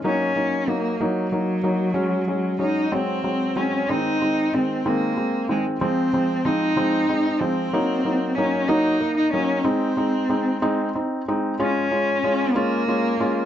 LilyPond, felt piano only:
\new Staff \with { instrumentName = "Felt piano" } { \time 6/8 \key aes \mixolydian \tempo 4. = 62 <ges bes ees'>8 <ges bes ees'>8 <ges bes ees'>8 <ges bes ees'>8 <ges bes ees'>8 <ges bes ees'>8 | <ges aes des'>8 <ges aes des'>8 <ges aes des'>8 <ges aes c'>8 <ges aes c'>8 <ges aes c'>8 | <ees aes c'>8 <ees aes c'>8 <ees aes c'>8 <ees aes c'>8 <aes c'>8 <ees aes c'>8 | <f aes c'>8 <f aes c'>8 <f aes c'>8 <f aes c'>8 <aes c'>8 <f aes c'>8 |
<ges bes ees'>8 <ges bes ees'>8 <ges bes ees'>8 <ges bes ees'>8 <bes ees'>8 <ges bes ees'>8 | <aes c' ees'>8 <aes c' ees'>8 <aes c' ees'>8 <aes c' ees'>8 <c' ees'>8 <aes c' ees'>8 | <aes des' f'>8 <aes des' f'>8 <aes des' f'>8 <aes des' f'>8 <aes des' f'>8 <aes des' f'>8 | }